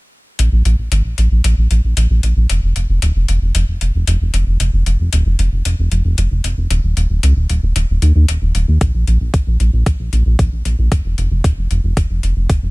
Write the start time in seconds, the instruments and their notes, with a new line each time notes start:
0.39 analog synth bass A#1, closed hi-hat
0.52 analog synth bass A#1
0.65 analog synth bass A#1, closed hi-hat
0.78 analog synth bass A#1
0.92 analog synth bass G#1, closed hi-hat
1.05 analog synth bass A#1
1.18 analog synth bass A#1, closed hi-hat
1.31 analog synth bass A#1
1.44 analog synth bass A#1, closed hi-hat
1.57 analog synth bass A#1
1.71 analog synth bass A#1, closed hi-hat
1.84 analog synth bass A#1
1.97 analog synth bass A#1, closed hi-hat
2.10 analog synth bass A#1
2.23 analog synth bass A#1, closed hi-hat
2.36 analog synth bass A#1
2.49 analog synth bass F1, closed hi-hat
2.63 analog synth bass F1
2.76 analog synth bass F1, closed hi-hat
2.89 analog synth bass F1
3.02 analog synth bass D#1, closed hi-hat
3.15 analog synth bass F1
3.28 analog synth bass F1, closed hi-hat
3.42 analog synth bass F1
3.55 analog synth bass F1, closed hi-hat
3.68 analog synth bass F1
3.81 analog synth bass F1, closed hi-hat
3.94 analog synth bass F1
4.07 analog synth bass F1, closed hi-hat
4.21 analog synth bass F1
4.34 analog synth bass F1, closed hi-hat
4.47 analog synth bass F1
4.60 analog synth bass F1, closed hi-hat
4.73 analog synth bass F1
4.86 analog synth bass F1, closed hi-hat
4.99 analog synth bass F1
5.13 analog synth bass D#1, closed hi-hat
5.26 analog synth bass F1
5.39 analog synth bass F1, closed hi-hat
5.52 analog synth bass F1
5.65 analog synth bass F1, closed hi-hat
5.78 analog synth bass F1
5.92 analog synth bass F1, closed hi-hat
6.05 analog synth bass F1
6.18 analog synth bass F1, closed hi-hat
6.31 analog synth bass F1
6.44 analog synth bass F1, closed hi-hat
6.57 analog synth bass F1
6.70 analog synth bass D#1, closed hi-hat
6.84 analog synth bass D#1
6.97 analog synth bass D#1, closed hi-hat
7.10 analog synth bass D#1
7.23 analog synth bass C#2, closed hi-hat
7.36 analog synth bass D#1
7.49 analog synth bass D#1, closed hi-hat
7.63 analog synth bass D#1
7.76 analog synth bass D#1, closed hi-hat
7.89 analog synth bass D#1
8.02 analog synth bass D#2, closed hi-hat
8.15 analog synth bass D#2
8.28 analog synth bass D#1, closed hi-hat
8.42 analog synth bass D#1
8.55 analog synth bass D#1, closed hi-hat
8.68 analog synth bass D#2
8.81 analog synth bass A#1, kick, closed hi-hat
8.94 analog synth bass A#1
9.07 analog synth bass A#1, closed hi-hat
9.21 analog synth bass A#1
9.34 analog synth bass G#1, kick, closed hi-hat
9.47 analog synth bass A#1
9.60 analog synth bass A#1, closed hi-hat
9.73 analog synth bass A#1
9.86 analog synth bass A#1, kick, closed hi-hat
10.00 analog synth bass A#1
10.13 analog synth bass A#1, closed hi-hat
10.26 analog synth bass A#1
10.39 analog synth bass A#1, kick, closed hi-hat
10.52 analog synth bass A#1
10.65 analog synth bass A#1, closed hi-hat
10.79 analog synth bass A#1
10.92 analog synth bass F1, kick, closed hi-hat
11.05 analog synth bass F1
11.18 analog synth bass F1, closed hi-hat
11.31 analog synth bass F1
11.44 analog synth bass D#1, kick, closed hi-hat
11.58 analog synth bass F1
11.71 analog synth bass F1, closed hi-hat
11.84 analog synth bass F1
11.97 analog synth bass F1, kick, closed hi-hat
12.10 analog synth bass F1
12.23 analog synth bass F1, closed hi-hat
12.37 analog synth bass F1
12.49 analog synth bass F1, kick, closed hi-hat
12.63 analog synth bass F1